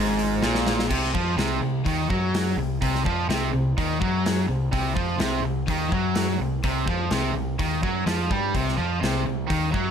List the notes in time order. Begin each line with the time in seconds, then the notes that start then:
Already playing: G#1 G#2 F3 C4 F4
0.19 open hi-hat
0.42 A#1 A#2, snare
0.55 snare
0.67 snare
0.79 snare
0.90 C2 C3, kick, crash
1.04 snare
1.15 F2 F3, kick
1.37 C2 C3, snare, open hi-hat
1.62 C2 C3
1.84 D#2 D#3, kick, open hi-hat
2.09 F#2 F#3, kick
2.34 snare, open hi-hat
2.57 C2 C3
2.82 C2 C3, kick, open hi-hat
2.95 snare
3.06 F2 F3, kick
3.29 C2 C3, snare, open hi-hat
3.52 C2 C3
3.78 D#2 D#3, kick, open hi-hat
4.00 F#2 F#3, kick
4.26 snare, open hi-hat
4.48 C2 C3
4.72 C2 C3, kick, open hi-hat
4.95 F2 F3, kick
5.18 C2 C3, snare, open hi-hat
5.42 C2 C3
5.67 D#2 D#3, kick, open hi-hat
5.91 F#2 F#3, kick
6.15 snare, open hi-hat
6.39 C2 C3
6.63 C2 C3, kick, open hi-hat
6.87 F2 F3, kick
7.11 C2 C3, snare, open hi-hat
7.33 C2 C3
7.59 D#2 D#3, kick, open hi-hat
7.83 F#2 F#3, kick
8.06 F2 F3, snare, open hi-hat
8.31 G2 G3, kick
8.55 C2 C3, kick, open hi-hat
8.68 snare
8.79 F2 F3
9.03 C2 C3, snare, open hi-hat
9.26 C2 C3
9.50 D#2 D#3, kick, open hi-hat
9.74 F#2 F#3, kick